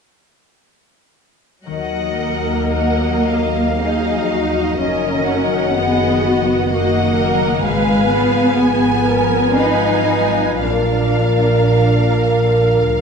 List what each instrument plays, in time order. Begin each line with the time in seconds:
1.66 double bass section D#2, harp D#3, cello section F#3, french horn section F#4 D#5, viola section A#4, violin section D#5 F#5
2.03 harp F#3
2.20 cello section A#3
2.37 harp D#4
2.72 violin section D#5 F#5, harp D#5
3.08 harp F#3
3.26 violin section F5
3.45 harp D#4
3.81 harp F#3, cello section D#4, viola section G#4, violin section D#5
4.15 harp F3
4.31 viola section F#4
4.49 harp D#4
4.79 double bass section F#1, harp F#2, cello section C#4, viola section A#4, violin section D#5
5.14 harp D#3
5.27 violin section F#5
5.45 harp F#3
5.75 cello section B3, harp D#4, viola section G#4, violin section D#5
6.08 harp D#3
6.23 viola section F#4
6.41 harp F#3
6.71 harp D#3, cello section A#3, viola section F#4, violin section D#5 F#5
7.03 harp C#3
7.17 viola section A#4
7.33 harp F#3
7.63 double bass section G#1, harp G#2, cello section G#3, french horn section F4 B4, viola section B4, violin section F5 G#5
7.95 harp G#3
8.11 cello section B3
8.27 harp F3
8.58 harp F4, viola section G#4, violin section G#5
8.91 harp G#3
9.07 viola section A#4
9.22 harp F3
9.56 harp G#3, cello section D#4, viola section B4, violin section F5 G#5
9.90 harp F#3
10.07 viola section B4
10.26 harp F3
10.60 double bass section A#1, harp A#2, cello section D4, viola section A#4, french horn section A#4, violin section F5
11.00 harp A#3
11.38 harp F3
11.76 harp F4
12.11 harp A#3
12.48 harp F3
12.84 double bass section D2, harp A#3